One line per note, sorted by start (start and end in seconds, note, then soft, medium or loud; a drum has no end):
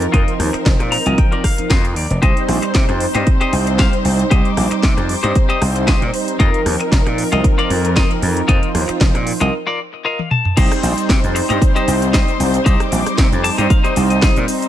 0.00 0.10 F3 medium
0.00 2.18 F3 medium
0.00 0.11 C4 medium
0.00 0.11 D#4 medium
0.00 2.18 D#4 medium
0.00 0.11 A#4 loud
0.00 2.18 A#4 medium
0.00 closed hi-hat soft
0.12 0.23 F2 medium
0.12 1.02 F3 medium
0.12 1.03 C4 medium
0.12 1.03 D#4 medium
0.12 0.33 F4 loud
0.12 0.33 A#4 medium
0.12 1.03 C5 medium
0.12 0.34 D#5 loud
0.12 kick loud
0.12 closed hi-hat medium
0.28 closed hi-hat soft
0.39 0.49 D#2 medium
0.39 cross-stick medium
0.39 open hi-hat loud
0.53 muted clean electric guitar stroke medium
0.53 muted slap bass stroke soft
0.53 closed hi-hat soft
0.65 0.75 F1 medium
0.65 muted clean electric guitar stroke soft
0.65 kick loud
0.65 snare loud
0.65 closed hi-hat soft
0.79 0.96 A#2 medium
0.79 muted clean electric guitar stroke soft
0.79 cross-stick medium
0.79 closed hi-hat soft
0.92 1.16 A#5 medium
0.92 open hi-hat loud
1.05 1.14 C2 loud
1.05 1.41 F3 medium
1.05 1.41 C4 medium
1.05 1.41 D#4 medium
1.05 1.18 F4 medium
1.05 1.18 A#4 medium
1.05 1.41 A#4 medium
1.05 1.18 D#5 medium
1.05 closed hi-hat soft
1.18 1.43 G5 medium
1.18 kick loud
1.18 closed hi-hat soft
1.32 1.44 F4 loud
1.32 1.44 A#4 medium
1.32 1.44 D5 loud
1.32 closed hi-hat soft
1.44 1.68 F5 medium
1.44 kick medium
1.44 cross-stick medium
1.44 open hi-hat loud
1.58 1.70 F3 medium
1.58 1.70 C4 medium
1.58 1.70 D#4 medium
1.58 1.70 A#4 medium
1.58 muted clean electric guitar stroke soft
1.58 muted slap bass stroke soft
1.58 closed hi-hat soft
1.70 1.96 F2 medium
1.70 1.84 F4 medium
1.70 1.84 A#4 medium
1.70 1.85 C5 medium
1.70 1.95 D#5 medium
1.70 kick loud
1.70 snare loud
1.70 closed hi-hat medium
1.85 closed hi-hat soft
1.96 2.05 D#2 medium
1.96 2.21 D5 medium
1.96 muted clean electric guitar stroke soft
1.96 open hi-hat loud
2.10 2.18 F1 medium
2.10 closed hi-hat soft
2.21 2.32 C2 medium
2.21 3.11 G3 medium
2.21 6.36 G3 medium
2.21 3.11 C4 medium
2.21 3.12 D#4 medium
2.21 8.45 D#4 medium
2.21 2.42 G4 loud
2.21 2.43 C5 loud
2.21 6.36 C5 medium
2.21 3.12 C5 loud
2.21 2.43 D#5 loud
2.21 kick loud
2.21 closed hi-hat soft
2.37 closed hi-hat soft
2.48 2.58 A#1 medium
2.48 cross-stick medium
2.48 open hi-hat loud
2.62 muted clean electric guitar stroke medium
2.62 closed hi-hat soft
2.74 2.84 C3 medium
2.74 muted clean electric guitar stroke soft
2.74 kick loud
2.74 snare loud
2.74 closed hi-hat soft
2.89 3.05 F2 medium
2.89 muted clean electric guitar stroke soft
2.89 cross-stick medium
2.89 closed hi-hat soft
3.00 open hi-hat loud
3.14 3.23 G2 loud
3.14 4.28 G3 medium
3.14 4.28 C4 medium
3.14 4.28 D#4 medium
3.14 3.27 G4 medium
3.14 3.27 C5 medium
3.14 4.29 C5 loud
3.14 3.27 D#5 medium
3.14 closed hi-hat soft
3.27 kick loud
3.27 closed hi-hat soft
3.41 3.53 G4 loud
3.41 3.53 C5 loud
3.41 3.53 D#5 loud
3.41 closed hi-hat soft
3.53 3.85 C2 medium
3.53 open hi-hat loud
3.66 muted clean electric guitar stroke soft
3.66 closed hi-hat soft
3.78 3.93 G4 medium
3.78 3.93 C5 medium
3.78 3.93 F5 medium
3.78 kick loud
3.78 snare loud
3.78 closed hi-hat soft
3.93 closed hi-hat soft
4.05 4.23 C2 medium
4.05 muted clean electric guitar stroke soft
4.05 open hi-hat loud
4.19 closed hi-hat soft
4.30 4.40 C2 medium
4.30 5.20 G3 medium
4.30 5.20 C4 medium
4.30 5.20 D#4 medium
4.30 4.51 G4 loud
4.30 4.51 C5 medium
4.30 4.51 D#5 loud
4.30 5.21 D6 medium
4.30 kick loud
4.30 closed hi-hat medium
4.45 closed hi-hat soft
4.57 4.66 A#1 medium
4.57 cross-stick medium
4.57 open hi-hat loud
4.71 muted clean electric guitar stroke medium
4.71 muted slap bass stroke soft
4.71 closed hi-hat soft
4.83 4.93 C3 medium
4.83 muted clean electric guitar stroke soft
4.83 kick loud
4.83 snare loud
4.83 closed hi-hat soft
4.97 5.14 F2 medium
4.97 muted clean electric guitar stroke soft
4.97 cross-stick medium
4.97 closed hi-hat soft
5.09 open hi-hat loud
5.23 5.31 G2 loud
5.23 5.58 G3 medium
5.23 5.59 C4 medium
5.23 5.59 D#4 medium
5.23 5.35 G4 medium
5.23 5.35 C5 medium
5.23 5.59 C5 medium
5.23 5.36 D#5 medium
5.23 closed hi-hat soft
5.35 kick loud
5.35 closed hi-hat soft
5.49 5.61 G4 loud
5.49 5.61 C5 loud
5.49 5.62 D#5 loud
5.49 closed hi-hat soft
5.61 5.94 C2 medium
5.61 6.11 G3 medium
5.61 6.11 C4 medium
5.61 6.11 D#4 medium
5.61 6.11 C5 medium
5.61 cross-stick medium
5.61 open hi-hat loud
5.75 muted clean electric guitar stroke soft
5.75 closed hi-hat soft
5.87 6.02 G4 medium
5.87 6.02 C5 medium
5.87 6.02 D#5 medium
5.87 kick loud
5.87 snare loud
5.87 closed hi-hat medium
6.02 6.10 A#2 medium
6.02 closed hi-hat soft
6.13 6.37 G3 medium
6.13 6.37 C4 medium
6.13 6.37 D#4 medium
6.13 6.37 C5 medium
6.13 muted clean electric guitar stroke soft
6.13 open hi-hat loud
6.28 closed hi-hat medium
6.39 6.49 F2 medium
6.39 7.28 F3 medium
6.39 9.50 F3 medium
6.39 7.29 C4 medium
6.39 7.29 D#4 medium
6.39 6.60 F4 loud
6.39 9.50 A#4 medium
6.39 6.60 A#4 loud
6.39 7.29 A#4 loud
6.39 6.60 D#5 loud
6.39 kick loud
6.39 closed hi-hat medium
6.54 closed hi-hat soft
6.66 6.75 D#2 medium
6.66 cross-stick medium
6.66 open hi-hat medium
6.80 muted clean electric guitar stroke medium
6.80 closed hi-hat medium
6.92 7.01 F1 loud
6.92 muted clean electric guitar stroke soft
6.92 kick loud
6.92 snare loud
6.92 closed hi-hat soft
7.05 7.22 A#2 medium
7.05 muted clean electric guitar stroke soft
7.05 cross-stick medium
7.05 closed hi-hat soft
7.18 open hi-hat loud
7.31 7.40 C2 loud
7.31 8.45 F3 medium
7.31 8.45 C4 medium
7.31 8.46 D#4 medium
7.31 7.44 F4 medium
7.31 7.44 A#4 medium
7.31 8.46 A#4 loud
7.31 7.45 D#5 loud
7.31 closed hi-hat medium
7.44 kick loud
7.44 closed hi-hat medium
7.58 7.70 F4 loud
7.58 7.70 A#4 loud
7.58 7.71 D5 loud
7.58 closed hi-hat soft
7.70 8.03 F2 medium
7.70 open hi-hat loud
7.84 muted clean electric guitar stroke soft
7.84 closed hi-hat medium
7.96 8.10 F4 medium
7.96 8.11 A#4 medium
7.96 8.11 D#5 medium
7.96 kick loud
7.96 snare loud
7.96 closed hi-hat medium
8.11 closed hi-hat soft
8.22 8.40 F2 loud
8.22 muted clean electric guitar stroke soft
8.22 open hi-hat loud
8.37 closed hi-hat medium
8.47 8.58 F2 medium
8.47 9.37 F3 medium
8.47 9.37 C4 medium
8.47 9.38 D#4 medium
8.47 8.68 F4 loud
8.47 9.52 F4 medium
8.47 8.69 A#4 loud
8.47 9.38 C5 medium
8.47 8.69 D#5 loud
8.47 kick loud
8.47 closed hi-hat medium
8.63 closed hi-hat soft
8.75 8.84 D#2 medium
8.75 cross-stick medium
8.75 open hi-hat loud
8.88 muted clean electric guitar stroke medium
8.88 muted slap bass stroke soft
8.88 closed hi-hat medium
9.00 9.10 F1 loud
9.00 muted clean electric guitar stroke soft
9.00 kick loud
9.00 snare loud
9.00 closed hi-hat medium
9.14 9.31 A#2 medium
9.14 muted clean electric guitar stroke soft
9.14 cross-stick medium
9.14 closed hi-hat soft
9.27 open hi-hat loud
9.40 9.49 C2 loud
9.40 9.53 F3 medium
9.40 9.53 C4 medium
9.40 9.53 D#4 medium
9.40 9.53 F4 medium
9.40 9.53 A#4 medium
9.40 9.53 D#5 loud
9.40 closed hi-hat medium
9.67 9.79 F4 loud
9.67 9.79 A#4 loud
9.67 9.79 D5 loud
9.93 muted clean electric guitar stroke soft
10.05 10.19 F4 medium
10.05 10.19 A#4 medium
10.05 10.20 D#5 medium
10.05 10.29 F5 medium
10.19 high tom soft
10.31 10.55 A5 medium
10.31 muted clean electric guitar stroke soft
10.31 mid tom medium
10.45 mid tom medium
10.56 10.66 C2 loud
10.56 11.46 G3 medium
10.56 14.68 G3 medium
10.56 11.46 C4 medium
10.56 10.71 D#4 loud
10.56 14.68 D#4 medium
10.56 11.47 D#4 medium
10.56 10.71 G4 loud
10.56 10.72 C5 loud
10.56 14.68 C5 medium
10.56 11.47 C5 loud
10.56 10.72 D#5 loud
10.56 kick loud
10.56 closed hi-hat medium
10.56 crash loud
10.56 cabasa soft
10.72 cross-stick medium
10.72 closed hi-hat soft
10.72 cabasa soft
10.83 10.92 A#1 loud
10.83 muted clean electric guitar stroke soft
10.83 open hi-hat loud
10.83 cabasa medium
10.98 closed hi-hat medium
10.98 cabasa soft
11.09 11.19 C3 loud
11.09 muted clean electric guitar stroke soft
11.09 kick loud
11.09 snare loud
11.09 closed hi-hat medium
11.09 cabasa soft
11.24 11.40 F2 medium
11.24 closed hi-hat soft
11.24 cabasa soft
11.35 muted clean electric guitar stroke medium
11.35 open hi-hat loud
11.35 cabasa medium
11.49 11.58 G2 loud
11.49 12.63 G3 medium
11.49 12.63 C4 medium
11.49 11.61 D#4 medium
11.49 12.63 D#4 medium
11.49 11.61 G4 medium
11.49 11.62 C5 medium
11.49 12.63 C5 loud
11.49 11.62 D#5 medium
11.49 closed hi-hat medium
11.49 cabasa soft
11.62 kick loud
11.62 closed hi-hat medium
11.62 cabasa soft
11.75 11.95 D#4 loud
11.75 11.95 G4 loud
11.75 11.95 C5 medium
11.75 11.95 D#5 loud
11.75 closed hi-hat soft
11.75 cabasa soft
11.88 12.20 C2 loud
11.88 open hi-hat loud
11.88 cabasa medium
12.02 closed hi-hat medium
12.02 cabasa soft
12.13 12.40 D#4 medium
12.13 12.40 G4 medium
12.13 12.40 C5 medium
12.13 12.40 D#5 medium
12.13 kick loud
12.13 snare loud
12.13 closed hi-hat medium
12.13 cabasa soft
12.28 closed hi-hat soft
12.28 cabasa soft
12.40 12.58 C2 loud
12.40 open hi-hat loud
12.40 cabasa medium
12.54 closed hi-hat medium
12.54 cabasa soft
12.65 12.75 C2 medium
12.65 13.55 G3 medium
12.65 13.55 C4 medium
12.65 12.80 D#4 loud
12.65 13.55 D#4 medium
12.65 12.80 G4 loud
12.65 12.80 C5 loud
12.65 12.80 D#5 loud
12.65 13.56 D6 medium
12.65 kick loud
12.65 closed hi-hat medium
12.65 cabasa soft
12.80 cross-stick medium
12.80 closed hi-hat soft
12.80 cabasa soft
12.91 13.01 A#1 loud
12.91 muted clean electric guitar stroke soft
12.91 open hi-hat loud
12.91 cabasa medium
13.06 cross-stick medium
13.06 closed hi-hat medium
13.06 cabasa soft
13.18 13.27 C3 loud
13.18 muted clean electric guitar stroke soft
13.18 kick loud
13.18 snare loud
13.18 closed hi-hat medium
13.18 cabasa soft
13.32 13.48 F2 medium
13.32 closed hi-hat soft
13.32 cabasa soft
13.44 13.57 A5 medium
13.44 muted clean electric guitar stroke medium
13.44 open hi-hat loud
13.44 cabasa medium
13.57 13.66 G2 loud
13.57 13.93 G3 medium
13.57 13.93 C4 medium
13.57 13.70 D#4 medium
13.57 13.94 D#4 medium
13.57 13.70 G4 medium
13.57 13.70 C5 medium
13.57 13.94 C5 medium
13.57 13.70 D#5 loud
13.57 13.69 G5 medium
13.57 closed hi-hat medium
13.57 cabasa soft
13.70 14.08 F5 medium
13.70 kick loud
13.70 closed hi-hat medium
13.70 cabasa soft
13.83 14.03 D#4 loud
13.83 14.03 G4 medium
13.83 14.03 C5 loud
13.83 14.03 D#5 loud
13.83 closed hi-hat soft
13.83 cabasa soft
13.95 14.29 C2 medium
13.95 14.45 G3 medium
13.95 14.45 C4 medium
13.95 14.46 D#4 medium
13.95 14.46 C5 loud
13.95 open hi-hat loud
13.95 cabasa medium
14.10 14.21 D#5 medium
14.10 closed hi-hat medium
14.10 cabasa soft
14.22 14.48 D#4 medium
14.22 14.48 G4 medium
14.22 14.49 C5 medium
14.22 14.49 D#5 medium
14.22 kick loud
14.22 snare loud
14.22 closed hi-hat medium
14.22 cabasa soft
14.36 14.44 A#2 loud
14.36 closed hi-hat soft
14.36 cabasa soft
14.48 14.68 G3 medium
14.48 14.68 C4 medium
14.48 14.68 D#4 medium
14.48 14.68 C5 medium
14.48 open hi-hat loud
14.48 cabasa medium
14.62 closed hi-hat medium
14.62 cabasa soft